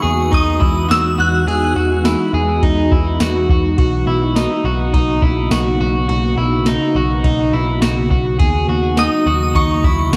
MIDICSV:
0, 0, Header, 1, 6, 480
1, 0, Start_track
1, 0, Tempo, 576923
1, 1231, Time_signature, 4, 2, 24, 8
1, 8458, End_track
2, 0, Start_track
2, 0, Title_t, "Synth bell"
2, 0, Program_c, 0, 98
2, 0, Note_on_c, 0, 85, 86
2, 285, Note_on_c, 0, 87, 81
2, 303, Note_off_c, 0, 85, 0
2, 725, Note_off_c, 0, 87, 0
2, 757, Note_on_c, 0, 88, 112
2, 998, Note_on_c, 0, 90, 99
2, 1001, Note_off_c, 0, 88, 0
2, 1441, Note_off_c, 0, 90, 0
2, 7478, Note_on_c, 0, 87, 97
2, 7952, Note_on_c, 0, 85, 74
2, 7969, Note_off_c, 0, 87, 0
2, 8458, Note_off_c, 0, 85, 0
2, 8458, End_track
3, 0, Start_track
3, 0, Title_t, "Clean electric guitar"
3, 0, Program_c, 1, 27
3, 18, Note_on_c, 1, 68, 82
3, 263, Note_on_c, 1, 63, 94
3, 265, Note_off_c, 1, 68, 0
3, 498, Note_on_c, 1, 64, 72
3, 507, Note_off_c, 1, 63, 0
3, 735, Note_off_c, 1, 64, 0
3, 738, Note_on_c, 1, 66, 76
3, 976, Note_off_c, 1, 66, 0
3, 986, Note_on_c, 1, 66, 84
3, 1224, Note_off_c, 1, 66, 0
3, 1228, Note_on_c, 1, 68, 90
3, 1461, Note_off_c, 1, 68, 0
3, 1464, Note_on_c, 1, 66, 67
3, 1703, Note_off_c, 1, 66, 0
3, 1706, Note_on_c, 1, 64, 76
3, 1944, Note_off_c, 1, 64, 0
3, 1948, Note_on_c, 1, 68, 69
3, 2187, Note_on_c, 1, 63, 89
3, 2189, Note_off_c, 1, 68, 0
3, 2427, Note_on_c, 1, 64, 74
3, 2429, Note_off_c, 1, 63, 0
3, 2665, Note_off_c, 1, 64, 0
3, 2669, Note_on_c, 1, 66, 83
3, 2905, Note_off_c, 1, 66, 0
3, 2915, Note_on_c, 1, 66, 78
3, 3140, Note_off_c, 1, 66, 0
3, 3150, Note_on_c, 1, 66, 87
3, 3384, Note_off_c, 1, 66, 0
3, 3387, Note_on_c, 1, 64, 81
3, 3625, Note_on_c, 1, 63, 73
3, 3629, Note_off_c, 1, 64, 0
3, 3868, Note_off_c, 1, 63, 0
3, 3869, Note_on_c, 1, 66, 83
3, 4107, Note_on_c, 1, 63, 95
3, 4110, Note_off_c, 1, 66, 0
3, 4345, Note_on_c, 1, 64, 66
3, 4349, Note_off_c, 1, 63, 0
3, 4583, Note_off_c, 1, 64, 0
3, 4586, Note_on_c, 1, 66, 79
3, 4822, Note_off_c, 1, 66, 0
3, 4832, Note_on_c, 1, 66, 82
3, 5055, Note_off_c, 1, 66, 0
3, 5065, Note_on_c, 1, 66, 98
3, 5302, Note_off_c, 1, 66, 0
3, 5305, Note_on_c, 1, 64, 77
3, 5548, Note_off_c, 1, 64, 0
3, 5548, Note_on_c, 1, 63, 78
3, 5790, Note_off_c, 1, 63, 0
3, 5791, Note_on_c, 1, 66, 82
3, 6025, Note_on_c, 1, 63, 86
3, 6031, Note_off_c, 1, 66, 0
3, 6268, Note_off_c, 1, 63, 0
3, 6268, Note_on_c, 1, 64, 70
3, 6500, Note_off_c, 1, 64, 0
3, 6504, Note_on_c, 1, 66, 90
3, 6735, Note_off_c, 1, 66, 0
3, 6745, Note_on_c, 1, 66, 77
3, 6980, Note_off_c, 1, 66, 0
3, 6983, Note_on_c, 1, 68, 101
3, 7227, Note_off_c, 1, 68, 0
3, 7231, Note_on_c, 1, 66, 80
3, 7468, Note_on_c, 1, 63, 77
3, 7471, Note_off_c, 1, 66, 0
3, 7710, Note_off_c, 1, 63, 0
3, 7710, Note_on_c, 1, 66, 86
3, 7944, Note_on_c, 1, 63, 88
3, 7950, Note_off_c, 1, 66, 0
3, 8188, Note_off_c, 1, 63, 0
3, 8189, Note_on_c, 1, 64, 75
3, 8426, Note_off_c, 1, 64, 0
3, 8429, Note_on_c, 1, 66, 78
3, 8458, Note_off_c, 1, 66, 0
3, 8458, End_track
4, 0, Start_track
4, 0, Title_t, "Ambient pad"
4, 0, Program_c, 2, 92
4, 0, Note_on_c, 2, 52, 81
4, 0, Note_on_c, 2, 56, 67
4, 0, Note_on_c, 2, 59, 66
4, 0, Note_on_c, 2, 63, 70
4, 0, Note_on_c, 2, 66, 75
4, 3124, Note_off_c, 2, 52, 0
4, 3124, Note_off_c, 2, 56, 0
4, 3155, Note_on_c, 2, 49, 74
4, 3155, Note_on_c, 2, 58, 71
4, 6957, Note_off_c, 2, 59, 0
4, 6957, Note_off_c, 2, 63, 0
4, 6960, Note_off_c, 2, 49, 0
4, 6960, Note_off_c, 2, 58, 0
4, 6960, Note_off_c, 2, 66, 0
4, 6995, Note_on_c, 2, 66, 80
4, 7001, Note_on_c, 2, 54, 67
4, 7001, Note_on_c, 2, 63, 67
4, 7006, Note_on_c, 2, 49, 75
4, 7006, Note_on_c, 2, 58, 69
4, 8458, Note_off_c, 2, 49, 0
4, 8458, Note_off_c, 2, 54, 0
4, 8458, Note_off_c, 2, 58, 0
4, 8458, Note_off_c, 2, 63, 0
4, 8458, Note_off_c, 2, 66, 0
4, 8458, End_track
5, 0, Start_track
5, 0, Title_t, "Picked electric bass"
5, 0, Program_c, 3, 34
5, 32, Note_on_c, 3, 40, 100
5, 243, Note_off_c, 3, 40, 0
5, 271, Note_on_c, 3, 40, 96
5, 482, Note_off_c, 3, 40, 0
5, 509, Note_on_c, 3, 40, 95
5, 721, Note_off_c, 3, 40, 0
5, 752, Note_on_c, 3, 40, 105
5, 963, Note_off_c, 3, 40, 0
5, 988, Note_on_c, 3, 40, 95
5, 1200, Note_off_c, 3, 40, 0
5, 1223, Note_on_c, 3, 40, 118
5, 1438, Note_off_c, 3, 40, 0
5, 1461, Note_on_c, 3, 40, 84
5, 1782, Note_off_c, 3, 40, 0
5, 1943, Note_on_c, 3, 40, 98
5, 2158, Note_off_c, 3, 40, 0
5, 2185, Note_on_c, 3, 40, 95
5, 2399, Note_off_c, 3, 40, 0
5, 2428, Note_on_c, 3, 40, 88
5, 2640, Note_off_c, 3, 40, 0
5, 2665, Note_on_c, 3, 40, 103
5, 2879, Note_off_c, 3, 40, 0
5, 2908, Note_on_c, 3, 40, 94
5, 3121, Note_off_c, 3, 40, 0
5, 3149, Note_on_c, 3, 35, 113
5, 3361, Note_off_c, 3, 35, 0
5, 3382, Note_on_c, 3, 35, 103
5, 3703, Note_off_c, 3, 35, 0
5, 3864, Note_on_c, 3, 35, 103
5, 4078, Note_off_c, 3, 35, 0
5, 4107, Note_on_c, 3, 35, 93
5, 4320, Note_off_c, 3, 35, 0
5, 4345, Note_on_c, 3, 35, 102
5, 4559, Note_off_c, 3, 35, 0
5, 4584, Note_on_c, 3, 35, 95
5, 4798, Note_off_c, 3, 35, 0
5, 4827, Note_on_c, 3, 35, 117
5, 5040, Note_off_c, 3, 35, 0
5, 5067, Note_on_c, 3, 35, 121
5, 5280, Note_off_c, 3, 35, 0
5, 5304, Note_on_c, 3, 35, 94
5, 5624, Note_off_c, 3, 35, 0
5, 5784, Note_on_c, 3, 35, 96
5, 5998, Note_off_c, 3, 35, 0
5, 6027, Note_on_c, 3, 35, 96
5, 6240, Note_off_c, 3, 35, 0
5, 6266, Note_on_c, 3, 35, 107
5, 6480, Note_off_c, 3, 35, 0
5, 6499, Note_on_c, 3, 35, 94
5, 6715, Note_off_c, 3, 35, 0
5, 6745, Note_on_c, 3, 35, 114
5, 6959, Note_off_c, 3, 35, 0
5, 6985, Note_on_c, 3, 39, 113
5, 7199, Note_off_c, 3, 39, 0
5, 7227, Note_on_c, 3, 39, 99
5, 7546, Note_off_c, 3, 39, 0
5, 7707, Note_on_c, 3, 39, 88
5, 7920, Note_off_c, 3, 39, 0
5, 7947, Note_on_c, 3, 39, 101
5, 8160, Note_off_c, 3, 39, 0
5, 8185, Note_on_c, 3, 39, 95
5, 8399, Note_off_c, 3, 39, 0
5, 8425, Note_on_c, 3, 39, 100
5, 8458, Note_off_c, 3, 39, 0
5, 8458, End_track
6, 0, Start_track
6, 0, Title_t, "Drums"
6, 272, Note_on_c, 9, 36, 86
6, 273, Note_on_c, 9, 51, 56
6, 355, Note_off_c, 9, 36, 0
6, 356, Note_off_c, 9, 51, 0
6, 511, Note_on_c, 9, 36, 100
6, 594, Note_off_c, 9, 36, 0
6, 756, Note_on_c, 9, 54, 70
6, 758, Note_on_c, 9, 38, 126
6, 762, Note_on_c, 9, 51, 59
6, 839, Note_off_c, 9, 54, 0
6, 841, Note_off_c, 9, 38, 0
6, 845, Note_off_c, 9, 51, 0
6, 1234, Note_on_c, 9, 51, 62
6, 1317, Note_off_c, 9, 51, 0
6, 1705, Note_on_c, 9, 38, 99
6, 1705, Note_on_c, 9, 54, 62
6, 1707, Note_on_c, 9, 51, 51
6, 1788, Note_off_c, 9, 38, 0
6, 1788, Note_off_c, 9, 54, 0
6, 1790, Note_off_c, 9, 51, 0
6, 2186, Note_on_c, 9, 36, 89
6, 2187, Note_on_c, 9, 51, 57
6, 2269, Note_off_c, 9, 36, 0
6, 2270, Note_off_c, 9, 51, 0
6, 2426, Note_on_c, 9, 36, 91
6, 2509, Note_off_c, 9, 36, 0
6, 2663, Note_on_c, 9, 54, 76
6, 2664, Note_on_c, 9, 38, 115
6, 2669, Note_on_c, 9, 51, 57
6, 2746, Note_off_c, 9, 54, 0
6, 2748, Note_off_c, 9, 38, 0
6, 2752, Note_off_c, 9, 51, 0
6, 2907, Note_on_c, 9, 36, 102
6, 2990, Note_off_c, 9, 36, 0
6, 3146, Note_on_c, 9, 51, 62
6, 3148, Note_on_c, 9, 36, 114
6, 3229, Note_off_c, 9, 51, 0
6, 3232, Note_off_c, 9, 36, 0
6, 3629, Note_on_c, 9, 54, 63
6, 3630, Note_on_c, 9, 38, 94
6, 3632, Note_on_c, 9, 51, 50
6, 3713, Note_off_c, 9, 38, 0
6, 3713, Note_off_c, 9, 54, 0
6, 3715, Note_off_c, 9, 51, 0
6, 4108, Note_on_c, 9, 36, 84
6, 4110, Note_on_c, 9, 51, 61
6, 4191, Note_off_c, 9, 36, 0
6, 4193, Note_off_c, 9, 51, 0
6, 4346, Note_on_c, 9, 36, 101
6, 4429, Note_off_c, 9, 36, 0
6, 4585, Note_on_c, 9, 54, 74
6, 4586, Note_on_c, 9, 38, 123
6, 4590, Note_on_c, 9, 51, 61
6, 4668, Note_off_c, 9, 54, 0
6, 4670, Note_off_c, 9, 38, 0
6, 4674, Note_off_c, 9, 51, 0
6, 5068, Note_on_c, 9, 51, 51
6, 5151, Note_off_c, 9, 51, 0
6, 5540, Note_on_c, 9, 38, 90
6, 5540, Note_on_c, 9, 54, 62
6, 5542, Note_on_c, 9, 51, 56
6, 5623, Note_off_c, 9, 38, 0
6, 5623, Note_off_c, 9, 54, 0
6, 5625, Note_off_c, 9, 51, 0
6, 6026, Note_on_c, 9, 51, 60
6, 6027, Note_on_c, 9, 36, 84
6, 6109, Note_off_c, 9, 51, 0
6, 6110, Note_off_c, 9, 36, 0
6, 6505, Note_on_c, 9, 54, 71
6, 6506, Note_on_c, 9, 38, 114
6, 6511, Note_on_c, 9, 51, 59
6, 6588, Note_off_c, 9, 54, 0
6, 6590, Note_off_c, 9, 38, 0
6, 6594, Note_off_c, 9, 51, 0
6, 6746, Note_on_c, 9, 36, 84
6, 6830, Note_off_c, 9, 36, 0
6, 6985, Note_on_c, 9, 51, 60
6, 6987, Note_on_c, 9, 36, 115
6, 7069, Note_off_c, 9, 51, 0
6, 7070, Note_off_c, 9, 36, 0
6, 7464, Note_on_c, 9, 54, 66
6, 7465, Note_on_c, 9, 38, 102
6, 7467, Note_on_c, 9, 51, 54
6, 7548, Note_off_c, 9, 38, 0
6, 7548, Note_off_c, 9, 54, 0
6, 7550, Note_off_c, 9, 51, 0
6, 7947, Note_on_c, 9, 36, 84
6, 7951, Note_on_c, 9, 51, 56
6, 8031, Note_off_c, 9, 36, 0
6, 8034, Note_off_c, 9, 51, 0
6, 8187, Note_on_c, 9, 36, 102
6, 8270, Note_off_c, 9, 36, 0
6, 8428, Note_on_c, 9, 54, 74
6, 8429, Note_on_c, 9, 38, 119
6, 8433, Note_on_c, 9, 51, 58
6, 8458, Note_off_c, 9, 38, 0
6, 8458, Note_off_c, 9, 51, 0
6, 8458, Note_off_c, 9, 54, 0
6, 8458, End_track
0, 0, End_of_file